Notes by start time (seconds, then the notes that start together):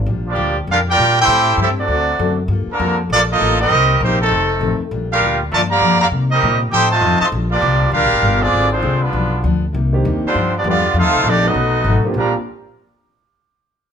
0.06 A#1 A#2 G3 D4 F4
0.26 F3 G3 D4
0.30 A#3 F4 G4 D5
0.36 D2 A#2 G3 D4
0.40 F4
0.67 F2 A#2 G3 D4 F4 G4 A#4
0.71 F5
0.88 G3 D4 F4 G4 A#4 D5 G5
0.98 A#2 G3 D4 F4
1.18 C4 E4 G4 A4 C5 G5
1.27 A2 G3 C4
1.32 E4
1.57 G2 A2 G3 C4 E4 A4
1.62 C4 E4 G4 E5
1.79 F#3 A3 C4 D4 F#4 A4 D5
1.88 D2 D3 A3 C4
1.92 F#4
2.19 F#2 D3 A3 C4 F#4
2.48 G2 G3 A#3 F4
2.53 A4
2.67 D3 F3 A#3, muted upright bass stroke
2.72 D4 A4 A#4
2.79 F2 G3 A#3 F4 A4
3.10 A#1 F3 G3 A#3 D4 F4 A4 D5
3.30 F3 A#3 D#4 F4 A4 D#5
3.40 A1 G3 A#3 F4 A4
3.60 G3 A#3 C4 D#4 G4 A#4 D#5
3.70 C2 C3 G3 A#3 D#4
4.01 A#1 C3 D#3 G3 A#3 C4 D#4 G4 C5
4.21 C3 D#3 A3 C4 D#4 A4
4.30 F1 F2 D#3 A3 C4
4.61 A1 F2 D#3 A3 C4
4.80 muted upright bass stroke
4.91 A#1 A#2 G3 D4 F4
5.11 G3 D4 F4 G4 A#4 F5
5.21 D2 A#2 G3 D4 F4
5.51 G2 F3 A3 A#3 F4 A#4 D5 A5
5.55 D4
5.70 D3 F3 A#3 G4 D5 F5 A#5
5.81 F2 G2 F3 A#3 D4
5.99 D3 F3 A#3 G4 D5 F5 A#5
6.11 C3 G3 A#3 D#4
6.29 G3 A#3 C4 D#4 G4 A#4 D#5
6.43 A#2 C3 G3 A#3 D#4
6.69 A2 F3 D#4 G4 A4 C5 G5
6.73 C4 D#4 A4
6.88 C3 D#3 A3 F4 C5 D#5 A5
7.01 F2 F3 C4 D#4 A4
7.18 C3 D#3 A3 F4 C5 D#5 A5, muted upright bass stroke
7.32 A#1 A#2 G3 D4
7.36 F4
7.50 F3 G3 A#3 D4 F4 G4 D5
7.62 C2 A#2 G3 D4 F4
7.91 D2 A#2 G3 D4 F4 G4 A#4 F5
7.96 D4 F4
8.03 A#1
8.13 G1
8.22 G1 A#2 G3 D4 F4
8.40 F3 G#3 C4 D4 F4 G#4 D5
8.52 G#1 D3 G#3 C4 F4
8.70 F3 G#3 C4 D4 F4 C5
8.82 C2 D3 G#3 C4 F4
9.00 D3 F3 G3 B3 D4 F4 B4
9.12 B1 G2 F3 B3 D4
9.42 D2 G2 F3 B3 D4
9.73 C2 C3 G3 A#3 D#4
9.93 D#3 A#3 C4 D4 G4
10.04 D#2 C3 G3 A#3 D#4
10.24 D3 F3 G3 C4 D4 F4 C5, muted upright bass stroke
10.34 G2 F3 B3 D4
10.55 F3 B3 D4 F4 G4 D5
10.64 E2 G2 F3 G3 A3 B3 D4 F4 G4
10.69 B3 F4 G4 D5
10.94 F2 D#3 A3 C4 F4
10.98 C4 D#4 A4 C5 F5
11.04 D#2
11.14 C2
11.24 A#1 F2 D#3 A3 C4 D4
11.28 A#3 D#4 G4 D5
11.45 F#3 A3 B3 C#4 D#4 F#4 A4 D#5
11.54 B1 B2 F#3 A3 D#4
11.84 G#1 B2 F#3 A3 D#4
12.04 A#3 C4 D4 F4 G4, muted upright bass stroke
12.14 A#1 A#2 F3 G3 A#3 C4 D4 G4 D5
12.18 F4 F5 A#5